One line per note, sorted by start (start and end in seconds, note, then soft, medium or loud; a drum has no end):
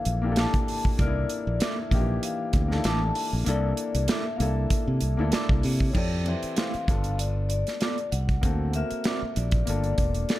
0.00 2.00 E3 medium
0.00 0.22 A#3 medium
0.00 0.23 D4 medium
0.00 0.24 E4 medium
0.00 0.32 A4 medium
0.00 0.40 F5 medium
0.05 0.45 A#1 medium
0.05 closed hi-hat medium
0.22 0.85 A#3 medium
0.22 0.86 D4 medium
0.22 0.86 E4 medium
0.22 0.30 G4 medium
0.32 0.90 A4 medium
0.36 0.51 A#3 medium
0.36 0.52 E4 medium
0.36 0.52 A4 medium
0.36 0.52 D5 medium
0.36 0.83 A5 medium
0.36 snare medium
0.36 closed hi-hat medium
0.54 kick medium
0.54 closed hi-hat soft
0.68 open hi-hat medium
0.85 kick medium
0.97 1.24 C2 medium
0.97 1.75 A#3 medium
0.97 1.75 D4 medium
0.97 1.07 D#4 medium
0.97 1.77 A#4 medium
0.97 1.63 D5 loud
0.97 kick loud
0.97 closed hi-hat medium
1.07 1.79 E4 medium
1.29 closed hi-hat medium
1.47 1.58 A#1 medium
1.60 1.75 A#3 medium
1.60 1.75 E4 medium
1.60 1.76 A4 medium
1.60 1.76 D5 medium
1.60 2.19 E5 loud
1.60 snare loud
1.60 closed hi-hat medium
1.91 2.17 A#1 medium
1.91 2.54 A#3 medium
1.91 2.55 D4 medium
1.91 2.00 D#4 medium
1.91 2.56 G4 medium
1.91 kick medium
1.91 closed hi-hat medium
2.00 2.59 E3 medium
2.23 2.81 F5 medium
2.23 closed hi-hat medium
2.53 2.79 D2 medium
2.53 kick medium
2.53 closed hi-hat medium
2.68 3.32 A#3 medium
2.68 3.33 D4 medium
2.68 2.77 D#4 soft
2.68 snare soft
2.72 3.34 A4 medium
2.77 3.37 E4 medium
2.84 3.10 A1 loud
2.84 2.99 A#3 medium
2.84 2.99 E4 medium
2.84 2.99 A4 medium
2.84 3.00 D5 medium
2.84 3.30 A5 loud
2.84 snare medium
2.84 closed hi-hat medium
3.15 open hi-hat medium
3.33 3.44 A#1 medium
3.44 3.72 C2 loud
3.44 4.22 A#3 medium
3.44 4.23 D4 medium
3.44 4.23 E4 medium
3.44 closed hi-hat medium
3.48 4.24 A4 medium
3.48 4.11 D5 medium
3.77 closed hi-hat medium
3.95 4.06 C2 medium
3.95 closed hi-hat medium
4.08 4.23 A#3 medium
4.08 4.23 E4 medium
4.08 4.23 A4 medium
4.08 4.24 D5 medium
4.08 4.35 E5 medium
4.08 snare loud
4.08 closed hi-hat medium
4.35 5.02 A#3 medium
4.35 5.02 D4 medium
4.35 4.41 F5 medium
4.40 4.65 C2 medium
4.40 5.03 E4 medium
4.40 5.04 A4 medium
4.40 5.30 E5 medium
4.40 closed hi-hat medium
4.70 kick medium
4.70 closed hi-hat medium
4.87 4.99 C3 medium
5.01 5.15 C2 medium
5.01 closed hi-hat medium
5.17 5.30 D2 medium
5.17 5.81 A#3 medium
5.17 5.81 D4 medium
5.17 5.82 E4 medium
5.17 5.83 A4 medium
5.32 5.47 A#3 medium
5.32 5.47 E4 medium
5.32 5.47 A4 medium
5.32 5.48 D5 medium
5.32 6.22 E5 medium
5.32 muted fingered electric bass stroke soft
5.32 snare medium
5.32 closed hi-hat medium
5.49 5.61 C2 medium
5.49 kick medium
5.63 5.90 C3 medium
5.63 open hi-hat medium
5.80 kick medium
5.90 6.20 C4 medium
5.90 6.20 E4 medium
5.90 5.96 C#5 medium
5.95 6.34 F2 loud
5.95 6.21 G4 medium
5.95 6.22 A4 medium
5.95 6.28 D5 medium
5.95 kick loud
5.95 crash medium
6.24 6.88 E3 medium
6.24 6.87 C4 medium
6.24 6.88 G4 soft
6.24 6.89 C5 medium
6.24 6.58 E5 medium
6.24 closed hi-hat medium
6.43 muted fingered electric bass stroke soft
6.43 closed hi-hat medium
6.56 6.71 A3 medium
6.56 6.71 E4 medium
6.56 6.72 G4 medium
6.56 6.72 C5 medium
6.56 7.15 F5 medium
6.56 7.15 C6 soft
6.56 snare loud
6.56 closed hi-hat medium
6.74 muted fingered electric bass stroke soft
6.74 closed hi-hat soft
6.86 7.63 G1 medium
6.86 7.88 B3 medium
6.86 7.89 D4 medium
6.86 7.90 F4 soft
6.86 7.90 A4 medium
6.86 kick loud
6.86 closed hi-hat medium
7.04 closed hi-hat soft
7.18 7.48 D5 medium
7.18 closed hi-hat medium
7.49 8.13 D5 medium
7.49 closed hi-hat medium
7.67 snare soft
7.67 closed hi-hat soft
7.80 7.95 B3 medium
7.80 7.96 F4 medium
7.80 7.96 A4 medium
7.80 7.96 D5 medium
7.80 snare medium
7.80 closed hi-hat medium
7.98 closed hi-hat soft
8.12 8.38 C2 medium
8.12 8.76 F#5 medium
8.12 closed hi-hat medium
8.29 kick medium
8.29 closed hi-hat soft
8.41 8.82 D2 medium
8.41 8.68 A#3 medium
8.41 8.69 C4 medium
8.41 8.69 F#4 medium
8.41 8.70 A4 medium
8.41 kick loud
8.41 closed hi-hat medium
8.73 9.64 A#3 medium
8.73 9.67 C4 medium
8.73 9.68 F#4 medium
8.73 9.69 A#4 medium
8.73 9.39 E5 loud
8.73 closed hi-hat medium
8.91 muted fingered electric bass stroke soft
8.91 closed hi-hat medium
9.04 9.20 C4 medium
9.04 9.20 F#4 medium
9.04 9.20 A#4 medium
9.04 9.20 D5 medium
9.04 snare loud
9.04 closed hi-hat medium
9.22 muted fingered electric bass stroke soft
9.36 9.62 A#1 loud
9.36 9.67 D5 medium
9.36 closed hi-hat medium
9.51 kick loud
9.51 closed hi-hat medium
9.65 9.93 G1 medium
9.65 10.39 A#3 medium
9.65 10.39 D4 medium
9.65 10.39 F4 medium
9.65 10.39 D5 medium
9.65 closed hi-hat medium
9.70 10.39 A4 medium
9.84 closed hi-hat soft
9.98 10.24 E1 medium
9.98 10.39 D6 medium
9.98 kick medium
9.98 closed hi-hat medium
10.15 closed hi-hat medium
10.29 10.39 A#3 medium
10.29 10.39 F4 medium
10.29 10.39 A4 medium
10.29 10.39 D5 medium
10.29 snare medium
10.29 closed hi-hat medium